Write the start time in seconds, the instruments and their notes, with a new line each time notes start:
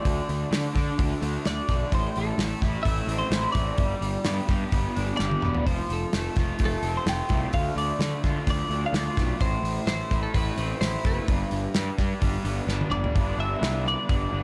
Already playing: overdriven electric guitar A3, clean electric guitar D5
0.03 picked electric bass D2, overdriven electric guitar D3, kick, open hi-hat
0.29 picked electric bass D2, open hi-hat
0.51 overdriven electric guitar D3, picked electric bass D3, snare, open hi-hat
0.74 picked electric bass D3, overdriven electric guitar D4, kick, open hi-hat
0.99 picked electric bass D2, overdriven electric guitar D3, kick, open hi-hat
1.21 picked electric bass D2, overdriven electric guitar A3, open hi-hat
1.45 picked electric bass D2, overdriven electric guitar D4, clean electric guitar D5, snare, open hi-hat
1.69 picked electric bass B1, overdriven electric guitar D3, kick, open hi-hat
1.92 picked electric bass A1, overdriven electric guitar A2, clean electric guitar C5, kick, open hi-hat
2.16 picked electric bass A1, clean electric guitar A4, open hi-hat
2.38 picked electric bass A1, overdriven electric guitar A3, snare, open hi-hat
2.61 picked electric bass A1, overdriven electric guitar E4, kick, open hi-hat
2.83 picked electric bass A1, overdriven electric guitar A3, clean electric guitar E5, kick, open hi-hat
3.07 picked electric bass A1, overdriven electric guitar C4, open hi-hat
3.19 clean electric guitar C5
3.31 picked electric bass A1, overdriven electric guitar E4, snare, open hi-hat
3.52 picked electric bass A1, overdriven electric guitar A3, clean electric guitar D5, kick, open hi-hat
3.78 picked electric bass G1, overdriven electric guitar G3, kick, open hi-hat
4.01 picked electric bass G1, open hi-hat
4.24 picked electric bass G2, overdriven electric guitar B3, snare, open hi-hat
4.48 picked electric bass G2, overdriven electric guitar G4, kick, open hi-hat
4.72 picked electric bass G1, overdriven electric guitar B3, kick, open hi-hat
4.95 picked electric bass G1, overdriven electric guitar D4, open hi-hat
5.17 picked electric bass G1, overdriven electric guitar G4, clean electric guitar D5, snare
5.31 high tom
5.42 picked electric bass E1, overdriven electric guitar B3, mid tom
5.54 floor tom
5.66 picked electric bass F1, overdriven electric guitar F3, clean electric guitar C5, kick, open hi-hat
5.89 picked electric bass F1, clean electric guitar A4, open hi-hat
6.13 picked electric bass F1, overdriven electric guitar A3, snare, open hi-hat
6.36 picked electric bass F1, overdriven electric guitar F4, kick, open hi-hat
6.59 picked electric bass F1, overdriven electric guitar A3, kick, open hi-hat
6.65 clean electric guitar A4
6.82 picked electric bass F1, overdriven electric guitar C4, open hi-hat
6.97 clean electric guitar C5
7.06 picked electric bass F1, overdriven electric guitar F4, clean electric guitar G5, snare, open hi-hat
7.29 picked electric bass C2, overdriven electric guitar A3, kick, open hi-hat
7.53 picked electric bass D2, overdriven electric guitar D3, clean electric guitar F5, kick, open hi-hat
7.76 picked electric bass D2, clean electric guitar D5, open hi-hat
7.99 picked electric bass D3, overdriven electric guitar A3, snare, open hi-hat
8.24 picked electric bass D3, overdriven electric guitar F4, kick, open hi-hat
8.47 picked electric bass D2, overdriven electric guitar A3, clean electric guitar D5, kick, open hi-hat
8.69 picked electric bass D2, overdriven electric guitar D4, open hi-hat
8.86 clean electric guitar F5
8.93 picked electric bass D2, overdriven electric guitar F4, clean electric guitar D5, snare, open hi-hat
9.17 picked electric bass B1, overdriven electric guitar A3, kick, snare, open hi-hat
9.40 picked electric bass A1, overdriven electric guitar A2, clean electric guitar C5, kick, open hi-hat
9.62 picked electric bass A1, open hi-hat
9.87 picked electric bass A1, overdriven electric guitar A3, clean electric guitar C5, snare, open hi-hat
10.11 picked electric bass A1, overdriven electric guitar E4, kick, open hi-hat
10.23 clean electric guitar A4
10.34 picked electric bass A1, overdriven electric guitar A3, clean electric guitar B4, kick, open hi-hat
10.57 picked electric bass A1, overdriven electric guitar C4, open hi-hat
10.81 picked electric bass A1, overdriven electric guitar E4, clean electric guitar C5, snare, open hi-hat
11.04 picked electric bass F#1, overdriven electric guitar A3, clean electric guitar B4, kick, open hi-hat
11.27 picked electric bass G1, overdriven electric guitar G2, kick, open hi-hat
11.51 picked electric bass G1, open hi-hat
11.74 picked electric bass G2, overdriven electric guitar G3, snare, open hi-hat
11.98 picked electric bass G2, overdriven electric guitar D4, kick, open hi-hat
12.21 picked electric bass G1, overdriven electric guitar G3, kick, open hi-hat
12.44 picked electric bass G1, overdriven electric guitar B3, open hi-hat
12.67 picked electric bass G1, overdriven electric guitar D4, snare
12.81 high tom
12.90 picked electric bass G1, overdriven electric guitar G3, clean electric guitar D5, mid tom
13.04 floor tom
13.15 picked electric bass G1, overdriven electric guitar G2 D3 G3 B3 D4, kick, open hi-hat
13.37 picked electric bass G1, overdriven electric guitar G3 B3 D4, clean electric guitar E5
13.60 picked electric bass C2, overdriven electric guitar G2 D3 G3 B3 D4, snare, open hi-hat
13.85 overdriven electric guitar G3 B3 D4, clean electric guitar D5
14.08 picked electric bass G1, overdriven electric guitar D3 G3 B3 D4, kick, open hi-hat
14.32 picked electric bass G1, overdriven electric guitar G3 B3 D4